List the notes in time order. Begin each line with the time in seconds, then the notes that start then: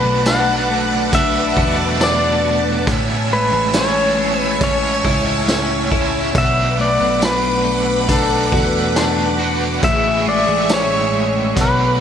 Already playing: B2 F#3 A3 D4 F#4 B4 F#5 A5 D6
0.04 B1
0.24 F#3 A3 D4 F#5, snare, closed hi-hat, tambourine
0.28 D4 F#4
0.70 A3
1.09 B2 F#3, kick, closed hi-hat
1.14 A3 D4 F#4 E5
1.57 E2 F#4, kick
2.00 D4 D5, snare, closed hi-hat, tambourine
2.45 F#4
2.85 A1 A2 E3 G#3 C#4 E4 C#5 G#5 E6, kick, closed hi-hat
3.31 G#3 B4
3.52 A1
3.72 E3 G#3 C#4, snare, closed hi-hat, tambourine
3.77 E4 C#5
4.18 G#3
4.40 B4
4.60 A2 E3 G#3 C#4 E4 C#5, kick, closed hi-hat
5.05 C#2 E4, kick
5.48 C#4, snare, closed hi-hat, tambourine
5.90 C#4 E4, kick
5.95 G#3
6.33 B1 B2 F#3 B4 F#5 D6, kick, closed hi-hat
6.37 A3 D4 F#4 E5
6.79 A3 D5
7.00 B1
7.22 D4 B4, snare, closed hi-hat, tambourine
7.65 A3
8.07 B2 F#3 A3 D4 F#4, kick, closed hi-hat
8.12 A4
8.52 E2 F#4, kick
8.96 D4, snare, closed hi-hat, tambourine
9.38 D4 F#4
9.43 A3
9.79 A1 A2 E3, kick
9.83 G#3 G#4 E5 C#6, closed hi-hat
9.87 E4
10.26 G#3 D5
10.47 A1
10.69 C#4, snare, closed hi-hat, tambourine
10.74 C#5
11.12 G#3
11.55 B1 B2 F#3 A3 D4 F#4 B4 F#5 D6, kick, closed hi-hat
11.61 B4